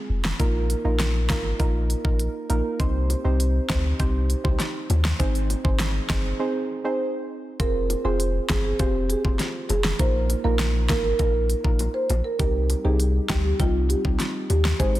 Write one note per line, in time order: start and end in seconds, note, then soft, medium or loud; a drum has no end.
0.09 0.33 F1 medium
0.25 snare loud
0.39 0.75 A#1 loud
0.39 0.60 A#3 loud
0.39 0.60 D#4 medium
0.39 0.61 F4 medium
0.39 0.61 A#4 loud
0.39 kick loud
0.39 closed hi-hat medium
0.70 closed hi-hat medium
0.84 1.31 A#1 loud
0.84 1.26 A#3 medium
0.84 1.26 D#4 medium
0.84 1.26 F4 medium
0.84 1.26 A#4 medium
1.00 snare loud
1.00 closed hi-hat medium
1.29 1.53 G#1 medium
1.29 1.57 A#3 medium
1.29 1.57 D#4 medium
1.29 1.57 F4 medium
1.29 1.57 A#4 medium
1.29 kick medium
1.29 snare loud
1.29 closed hi-hat medium
1.59 1.95 A#1 loud
1.59 1.80 A#3 medium
1.59 1.80 D#4 medium
1.59 1.80 F4 medium
1.59 1.81 A#4 loud
1.59 kick medium
1.59 closed hi-hat medium
1.90 closed hi-hat medium
2.04 2.28 A#1 loud
2.04 2.25 A#3 medium
2.04 2.25 D#4 medium
2.04 2.26 F4 medium
2.04 2.26 A#4 medium
2.04 kick loud
2.19 closed hi-hat loud
2.49 2.61 A#1 loud
2.49 2.70 A#3 medium
2.49 2.70 D#4 medium
2.49 2.71 F4 medium
2.49 2.71 A#4 medium
2.49 closed hi-hat medium
2.79 3.15 C2 loud
2.79 3.00 C4 medium
2.79 3.00 D#4 medium
2.79 3.01 G4 medium
2.79 3.01 C5 loud
2.79 kick loud
2.79 closed hi-hat medium
3.10 closed hi-hat medium
3.10 high bongo medium
3.24 3.60 C2 medium
3.24 3.66 C4 medium
3.24 3.66 D#4 medium
3.24 3.66 G4 medium
3.24 3.66 C5 medium
3.40 closed hi-hat medium
3.69 3.93 D2 medium
3.69 3.97 C4 medium
3.69 3.97 D#4 medium
3.69 3.97 G4 medium
3.69 3.97 C5 medium
3.69 kick medium
3.69 snare loud
3.69 closed hi-hat medium
3.99 4.35 C2 loud
3.99 4.20 C4 medium
3.99 4.20 D#4 medium
3.99 4.20 G4 medium
3.99 4.21 C5 loud
3.99 kick medium
3.99 closed hi-hat medium
4.30 closed hi-hat medium
4.44 4.56 C2 medium
4.44 4.65 C4 medium
4.44 4.65 D#4 medium
4.44 4.65 G4 medium
4.44 4.66 C5 medium
4.44 kick loud
4.44 high bongo medium
4.60 snare medium
4.60 closed hi-hat medium
4.60 high bongo medium
4.90 5.13 D#2 medium
4.90 closed hi-hat medium
4.90 high bongo medium
4.90 low bongo medium
5.05 snare loud
5.19 5.55 G#1 loud
5.19 5.40 C4 medium
5.19 5.40 D#4 medium
5.19 5.40 G#4 medium
5.19 5.41 C5 loud
5.19 kick loud
5.19 closed hi-hat medium
5.35 closed hi-hat soft
5.50 closed hi-hat medium
5.50 high bongo medium
5.64 6.00 G#1 loud
5.64 6.06 C4 medium
5.64 6.06 D#4 medium
5.64 6.06 G#4 medium
5.64 6.06 C5 medium
5.64 kick loud
5.80 snare loud
5.80 closed hi-hat medium
6.09 6.33 G1 medium
6.09 6.37 C4 medium
6.09 6.37 D#4 medium
6.09 6.37 G#4 medium
6.09 6.37 C5 medium
6.09 kick medium
6.09 snare loud
6.09 closed hi-hat medium
6.39 6.60 C4 medium
6.39 6.60 D#4 medium
6.39 6.61 G#4 medium
6.39 6.61 C5 loud
6.84 7.05 C4 medium
6.84 7.05 D#4 medium
6.84 7.06 G#4 medium
6.84 7.06 C5 medium
7.60 7.95 F1 loud
7.60 7.80 C4 medium
7.60 7.81 F4 medium
7.60 7.81 G#4 medium
7.60 7.70 A#4 loud
7.60 7.81 C5 loud
7.60 kick loud
7.60 closed hi-hat medium
7.90 closed hi-hat medium
7.90 high bongo medium
8.04 8.39 F1 loud
8.04 8.46 C4 medium
8.04 8.46 F4 medium
8.04 8.46 G#4 medium
8.04 8.15 G#4 medium
8.04 8.46 C5 medium
8.20 closed hi-hat medium
8.49 8.73 G1 medium
8.49 8.77 C4 medium
8.49 8.77 F4 medium
8.49 8.60 G#4 medium
8.49 8.77 G#4 medium
8.49 8.77 C5 medium
8.49 kick medium
8.49 snare loud
8.49 closed hi-hat medium
8.49 low bongo medium
8.65 8.75 G#4 medium
8.79 9.15 F1 loud
8.79 9.00 C4 loud
8.79 9.00 F4 medium
8.79 8.90 G4 medium
8.79 9.01 G#4 medium
8.79 9.01 C5 loud
8.79 kick medium
8.79 closed hi-hat medium
8.79 high bongo soft
9.10 9.20 G#4 medium
9.10 closed hi-hat medium
9.24 9.36 F1 medium
9.24 9.45 C4 medium
9.24 9.45 F4 medium
9.24 9.46 G#4 medium
9.24 9.46 C5 medium
9.24 kick loud
9.24 high bongo medium
9.39 snare medium
9.39 closed hi-hat medium
9.39 high bongo medium
9.69 9.93 F1 medium
9.69 9.80 G#4 medium
9.69 closed hi-hat medium
9.69 high bongo medium
9.69 low bongo medium
9.85 snare loud
9.99 10.34 A#1 loud
9.99 10.20 A#3 loud
9.99 10.20 D#4 medium
9.99 10.20 F4 medium
9.99 10.21 A#4 loud
9.99 10.10 C5 loud
9.99 kick loud
9.99 closed hi-hat medium
10.30 closed hi-hat medium
10.30 high bongo medium
10.44 10.91 A#1 loud
10.44 10.86 A#3 medium
10.44 10.86 D#4 medium
10.44 10.86 F4 medium
10.44 10.55 A#4 medium
10.44 10.86 A#4 medium
10.59 snare loud
10.59 closed hi-hat medium
10.89 11.13 G#1 medium
10.89 11.17 A#3 medium
10.89 11.17 D#4 medium
10.89 11.17 F4 medium
10.89 11.00 A#4 medium
10.89 11.17 A#4 medium
10.89 kick medium
10.89 snare loud
10.89 closed hi-hat medium
10.89 low bongo medium
11.04 11.15 A#4 medium
11.19 11.54 A#1 loud
11.19 11.40 A#3 medium
11.19 11.40 D#4 medium
11.19 11.40 F4 medium
11.19 11.62 A#4 loud
11.19 11.40 A#4 loud
11.19 kick medium
11.19 closed hi-hat medium
11.19 high bongo soft
11.50 closed hi-hat medium
11.64 11.88 A#1 loud
11.64 11.85 A#3 medium
11.64 11.85 D#4 medium
11.64 11.85 F4 medium
11.64 11.85 A#4 medium
11.64 kick loud
11.64 high bongo medium
11.79 closed hi-hat loud
11.79 high bongo medium
11.94 12.05 C5 medium
12.10 12.21 A#1 medium
12.10 closed hi-hat medium
12.10 high bongo medium
12.10 low bongo medium
12.24 12.35 A#4 medium
12.39 12.74 C2 loud
12.39 12.60 G3 loud
12.39 12.60 C4 medium
12.39 12.60 D#4 medium
12.39 12.60 G4 loud
12.39 12.50 A#4 loud
12.39 kick loud
12.39 closed hi-hat medium
12.70 closed hi-hat medium
12.70 high bongo medium
12.84 13.20 C2 loud
12.84 13.26 G3 medium
12.84 13.26 C4 medium
12.84 13.26 D#4 medium
12.84 13.26 G4 medium
12.84 12.95 G#4 medium
13.00 closed hi-hat medium
13.29 13.53 D2 loud
13.29 13.57 G3 medium
13.29 13.57 C4 medium
13.29 13.57 D#4 medium
13.29 13.40 G4 medium
13.29 13.57 G4 medium
13.29 kick medium
13.29 snare loud
13.29 closed hi-hat medium
13.29 low bongo medium
13.44 13.55 G4 medium
13.59 13.95 C2 loud
13.59 13.80 G3 medium
13.59 13.80 C4 medium
13.59 13.81 D#4 medium
13.59 13.70 F4 medium
13.59 13.81 G4 loud
13.59 kick medium
13.59 closed hi-hat medium
13.59 high bongo soft
13.89 14.00 G4 medium
13.89 closed hi-hat medium
14.04 14.16 C2 medium
14.04 14.25 G3 medium
14.04 14.26 C4 medium
14.04 14.26 D#4 medium
14.04 14.26 G4 medium
14.04 kick loud
14.04 high bongo medium
14.20 snare medium
14.20 closed hi-hat loud
14.20 high bongo medium
14.50 14.73 D#2 medium
14.50 14.60 G4 medium
14.50 closed hi-hat medium
14.50 high bongo medium
14.50 low bongo medium
14.65 snare loud
14.79 15.00 G#1 loud
14.79 15.00 G#3 loud
14.79 15.00 C4 medium
14.79 15.00 D#4 medium
14.79 15.00 G#4 loud
14.79 14.90 C5 loud
14.79 kick loud
14.79 closed hi-hat medium
14.95 closed hi-hat medium